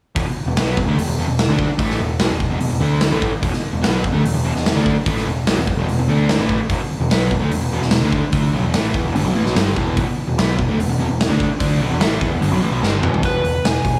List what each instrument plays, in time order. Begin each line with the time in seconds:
0.15 picked electric bass E1, overdriven electric guitar E2 B2, kick, open hi-hat
0.27 muted picked electric bass stroke, muted overdriven electric guitar stroke
0.36 muted picked electric bass stroke, muted overdriven electric guitar stroke
0.46 picked electric bass E1, overdriven electric guitar E2 B2
0.56 picked electric bass B1, overdriven electric guitar B2 F#3 B3, snare, open hi-hat
0.77 picked electric bass E1, overdriven electric guitar E2 B2, kick
0.86 picked electric bass D2, overdriven electric guitar D3 A3
0.97 picked electric bass E1, overdriven electric guitar E2 B2, open hi-hat
1.07 picked electric bass E1, overdriven electric guitar E2 B2
1.17 picked electric bass E1, overdriven electric guitar E2 B2
1.28 picked electric bass E1, overdriven electric guitar E2 B2
1.39 snare, open hi-hat
1.48 picked electric bass D2, overdriven electric guitar D3 A3 D4
1.59 kick
1.69 muted picked electric bass stroke, muted overdriven electric guitar stroke
1.78 picked electric bass A1, overdriven electric guitar A2 E3 A3, kick, open hi-hat
1.90 snare
2.00 picked electric bass E1, overdriven electric guitar E2 B2
2.19 picked electric bass B1, overdriven electric guitar B2 F#3, snare, open hi-hat
2.30 picked electric bass E1, overdriven electric guitar E2 B2
2.40 kick
2.50 picked electric bass E1, overdriven electric guitar E2 B2
2.60 picked electric bass E1, overdriven electric guitar E2 B2, open hi-hat
2.70 picked electric bass E1, overdriven electric guitar E2 B2
2.81 picked electric bass D2, overdriven electric guitar D3 A3 D4
3.00 snare, open hi-hat
3.11 picked electric bass A1, overdriven electric guitar A2 E3 A3
3.22 kick
3.32 muted overdriven electric guitar stroke, muted picked electric bass stroke
3.42 picked electric bass E1, overdriven electric guitar E2 B2, kick, open hi-hat
3.53 muted overdriven electric guitar stroke, muted picked electric bass stroke, snare
3.62 muted overdriven electric guitar stroke, muted picked electric bass stroke
3.73 picked electric bass E1, overdriven electric guitar E2 B2
3.82 picked electric bass B1, overdriven electric guitar B2 F#3 B3, snare, open hi-hat
4.03 picked electric bass E1, overdriven electric guitar E2 B2, kick
4.13 picked electric bass D2, overdriven electric guitar D3 A3
4.24 picked electric bass E1, overdriven electric guitar E2 B2, open hi-hat
4.34 picked electric bass E1, overdriven electric guitar E2 B2
4.44 picked electric bass E1, overdriven electric guitar E2 B2
4.55 picked electric bass E1, overdriven electric guitar E2 B2, snare
4.66 snare, open hi-hat
4.75 picked electric bass D2, overdriven electric guitar D3 A3 D4
4.86 kick
4.96 muted picked electric bass stroke, muted overdriven electric guitar stroke
5.06 picked electric bass A1, overdriven electric guitar A2 E3 A3, kick, open hi-hat
5.17 snare
5.27 picked electric bass E1, overdriven electric guitar E2 B2
5.47 picked electric bass B1, overdriven electric guitar B2 F#3, snare, open hi-hat
5.56 picked electric bass E1, overdriven electric guitar E2 B2
5.67 kick
5.77 picked electric bass E1, overdriven electric guitar E2 B2
5.88 picked electric bass E1, overdriven electric guitar E2 B2, open hi-hat
5.98 picked electric bass E1, overdriven electric guitar E2 B2
6.08 picked electric bass D2, overdriven electric guitar D3 A3 D4
6.29 snare, open hi-hat
6.38 picked electric bass A1, overdriven electric guitar A2 E3 A3
6.49 kick
6.59 muted picked electric bass stroke, muted overdriven electric guitar stroke
6.69 picked electric bass E1, overdriven electric guitar E2 B2, kick, open hi-hat
6.80 muted picked electric bass stroke, muted overdriven electric guitar stroke
6.90 muted picked electric bass stroke, muted overdriven electric guitar stroke
7.00 picked electric bass E1, overdriven electric guitar E2 B2
7.10 picked electric bass B1, overdriven electric guitar B2 F#3 B3, snare, open hi-hat
7.31 picked electric bass E1, overdriven electric guitar E2 B2, kick
7.41 picked electric bass D2, overdriven electric guitar D3 A3
7.51 picked electric bass E1, overdriven electric guitar E2 B2, open hi-hat
7.61 picked electric bass E1, overdriven electric guitar E2 B2
7.72 picked electric bass E1, overdriven electric guitar E2 B2
7.81 picked electric bass E1, overdriven electric guitar E2 B2, snare
7.91 snare, open hi-hat
8.01 picked electric bass D2, overdriven electric guitar D3 A3 D4
8.12 kick
8.23 muted picked electric bass stroke, muted overdriven electric guitar stroke
8.32 picked electric bass D2, overdriven electric guitar D3 A3 D4, kick, open hi-hat
8.53 picked electric bass B1, overdriven electric guitar B2 F#3
8.63 picked electric bass E1, overdriven electric guitar E2 B2
8.73 picked electric bass A1, overdriven electric guitar A2 E3 A3, snare, open hi-hat
8.94 picked electric bass E2, overdriven electric guitar E3 B3, kick
9.05 picked electric bass E1, overdriven electric guitar E2 B2
9.14 picked electric bass G1, overdriven electric guitar G2 D3, open hi-hat
9.24 picked electric bass B1, overdriven electric guitar B2 F#3
9.34 picked electric bass A1, overdriven electric guitar A2 E3
9.45 picked electric bass B1, overdriven electric guitar B2 F#3, snare
9.55 picked electric bass G1, overdriven electric guitar G2 D3 G3, snare, open hi-hat
9.76 picked electric bass E1, overdriven electric guitar E2 B2 E3, kick
9.97 picked electric bass E1, overdriven electric guitar E2 B2, kick, open hi-hat
10.07 muted picked electric bass stroke, muted overdriven electric guitar stroke
10.17 muted picked electric bass stroke, muted overdriven electric guitar stroke
10.28 picked electric bass E1, overdriven electric guitar E2 B2
10.38 picked electric bass B1, overdriven electric guitar B2 F#3 B3, snare, open hi-hat
10.58 picked electric bass E1, overdriven electric guitar E2 B2, kick
10.67 picked electric bass D2, overdriven electric guitar D3 A3
10.78 picked electric bass E1, overdriven electric guitar E2 B2, open hi-hat
10.88 picked electric bass E1, overdriven electric guitar E2 B2
10.98 picked electric bass E1, overdriven electric guitar E2 B2
11.09 picked electric bass E1, overdriven electric guitar E2 B2
11.20 snare, open hi-hat
11.29 picked electric bass D2, overdriven electric guitar D3 A3 D4
11.40 kick
11.50 muted overdriven electric guitar stroke, muted picked electric bass stroke
11.59 picked electric bass D2, overdriven electric guitar D3 A3 D4, kick, open hi-hat
11.80 picked electric bass B1, overdriven electric guitar B2 F#3
11.90 picked electric bass E1, overdriven electric guitar E2 B2
12.00 picked electric bass A1, overdriven electric guitar A2 E3 A3, snare, open hi-hat
12.21 picked electric bass E2, overdriven electric guitar E3 B3, kick
12.31 picked electric bass E1, overdriven electric guitar E2 B2
12.41 picked electric bass G1, overdriven electric guitar G2 D3, open hi-hat
12.51 picked electric bass B1, overdriven electric guitar B2 F#3
12.61 picked electric bass A1, overdriven electric guitar A2 E3
12.71 picked electric bass B1, overdriven electric guitar B2 F#3
12.81 picked electric bass G1, overdriven electric guitar G2 D3 G3, snare
13.01 picked electric bass E1, overdriven electric guitar E2 B2 E3, mid tom
13.14 floor tom
13.22 picked electric bass E1, overdriven electric guitar E2 B2 E3, lead electric guitar B4, kick, open hi-hat
13.44 picked electric bass E1, overdriven electric guitar E2 B2, open hi-hat
13.64 picked electric bass E1, overdriven electric guitar E2 B2, lead electric guitar G#5, snare, open hi-hat
13.85 picked electric bass E1, overdriven electric guitar E2 B2, kick, open hi-hat